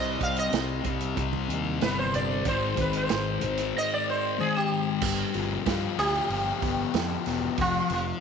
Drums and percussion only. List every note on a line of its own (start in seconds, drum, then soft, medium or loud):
0.21 kick medium
0.21 closed hi-hat medium
0.36 closed hi-hat medium
0.53 snare loud
0.53 closed hi-hat medium
0.84 kick medium
0.84 closed hi-hat medium
0.84 low conga medium
1.00 closed hi-hat medium
1.17 kick loud
1.17 closed hi-hat medium
1.33 high conga medium
1.50 closed hi-hat medium
1.65 high conga medium
1.81 snare loud
1.81 closed hi-hat medium
1.98 high conga medium
2.14 closed hi-hat medium
2.14 low conga medium
2.45 kick loud
2.45 closed hi-hat medium
2.77 kick medium
2.77 closed hi-hat medium
2.77 high conga medium
2.77 low conga medium
2.93 closed hi-hat medium
3.09 snare loud
3.09 closed hi-hat medium
3.41 closed hi-hat medium
3.41 low conga medium
3.57 snare soft
3.57 closed hi-hat medium
5.01 kick loud
5.01 crash loud
5.34 open hi-hat medium
5.66 kick medium
5.66 snare loud
5.66 open hi-hat medium
5.99 open hi-hat medium
6.30 open hi-hat medium
6.62 kick medium
6.62 open hi-hat medium
6.94 snare loud
6.94 open hi-hat medium
7.26 snare soft
7.26 open hi-hat medium
7.58 kick loud
7.58 open hi-hat medium
7.90 open hi-hat medium